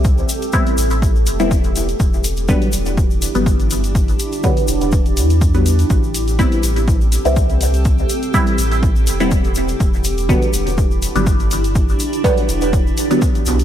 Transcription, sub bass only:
X:1
M:4/4
L:1/16
Q:"Swing 16ths" 1/4=123
K:Am
V:1 name="Sub bass" clef=bass
C,, z4 z A,,,4 E,,,4- E,,, z | E,,,4 z2 E,,,4 z G,,,4- G,,,- | G,,, z4 z E,,,4 E,,4- E,, z | A,,,4 z2 A,,,4 z C,,4- C,,- |
C,, z4 z A,,,4 E,,,4- E,,, z | E,,,4 z2 E,,,4 z G,,,4- G,,,- | G,,, z4 z E,,,3 z4 z B,,, z |]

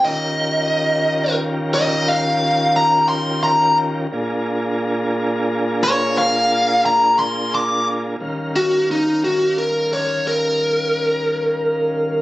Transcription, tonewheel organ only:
X:1
M:12/8
L:1/8
Q:3/8=59
K:Ebmix
V:1 name="Tonewheel organ"
[E,DFGB]12 | [B,,=DFAB]12 | [E,G,DBf]12 |]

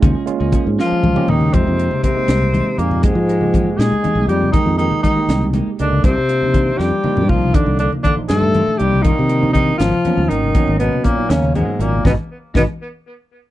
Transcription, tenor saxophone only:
X:1
M:6/8
L:1/8
Q:3/8=80
K:Fdor
V:1 name="Tenor saxophone"
z3 F2 E | C2 C3 B, | A,3 A2 G | E E E2 z D |
C3 G2 F | D D D =A2 G | E2 E F2 E- | E _C B, _D A, B, |
_C z C z3 |]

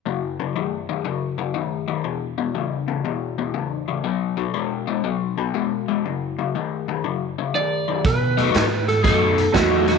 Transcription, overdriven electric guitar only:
X:1
M:4/4
L:1/8
Q:"Swing" 1/4=120
K:F#mix
V:1 name="Overdriven electric guitar" clef=bass
[F,,C,] [F,,C,] [F,,D,] [F,,D,] [F,,C,] [F,,C,] [F,,D,] [F,,D,] | [E,,B,,] [E,,B,,] [E,,C,] [E,,C,] [E,,B,,] [E,,B,,] [E,,C,] [E,,C,] | [B,,F,] [B,,F,] [B,,G,] [B,,G,] [B,,F,] [B,,F,] [B,,G,] [B,,G,] | [F,,C,] [F,,C,] [F,,D,] [F,,D,] [F,,C,] [F,,C,] [F,,D,] [F,,D,] |
[K:Bmix] z [B,,F,A,D] z2 [B,,F,A,D] z [B,,F,A,D] z |]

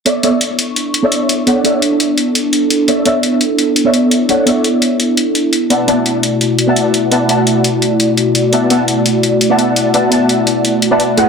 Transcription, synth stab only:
X:1
M:4/4
L:1/16
Q:1/4=170
K:Bm
V:1 name="Synth stab"
[B,Acde]2 [B,Acde] z8 [B,Acde]4- [B,Acde] | [B,Acdf]2 [B,Acde]12- [B,Acde]2 | [B,Acde]2 [B,Acde] z8 [B,Acde]4- [B,Acde] | [B,Acdf]2 [B,Acde]12- [B,Acde]2 |
[B,Bdefa]2 [B,Bdefa] z8 [B,Bdefa]4- [B,Bdefa] | [B,Bdefa]2 [B,Bdefa]12- [B,Bdefa]2 | [B,Bdefa]2 [B,Bdefa] z8 [B,Bdefa]4- [B,Bdefa] | [B,Bdefa]2 [B,Bdefa]8- [B,Bdefa] [B,Bdefa] z2 [A,E^GBf]2 |]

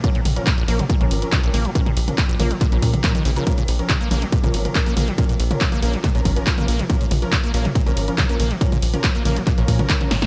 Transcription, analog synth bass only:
X:1
M:4/4
L:1/16
Q:1/4=140
K:Bbm
V:1 name="Analog synth bass" clef=bass
z2 B,,, z3 B,,, z2 B,,, A,,, z3 B,,, z | z2 B,,, z3 B,,, z2 B,,, B,, z3 B,,, z | z2 B,,, z3 B,,, z2 B,,, A,,, z3 B,,, z | z2 B,,, z3 B,,, z2 B,,, A,,, z3 B,,, z |
z2 B,,, z3 B,,, z2 B,,, A,,, z3 B,,, z | z2 B,,, z3 B,,, z2 B,,, B,, z3 A,,, z |]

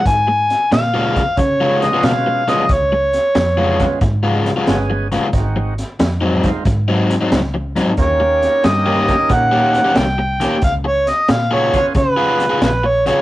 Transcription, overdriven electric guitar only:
X:1
M:4/4
L:1/16
Q:"Swing" 1/4=91
K:Db
V:1 name="Overdriven electric guitar"
z4 z [D,A,_CF] z3 [D,A,CF] z [D,A,CF] z2 [D,A,CF] z | z4 z [D,A,_CF] z3 [D,A,CF] z [D,A,CF] z2 [D,A,CF] z | z4 z [A,,G,CE] z3 [A,,G,CE] z [A,,G,CE] z2 [A,,G,CE] z | z4 z [E,B,D=G] z3 [E,B,DG] z [E,B,DG] z2 [E,B,DG] z |
z4 z [D,_CFA] z3 [D,CFA] z [D,CFA] z2 [D,CFA] z |]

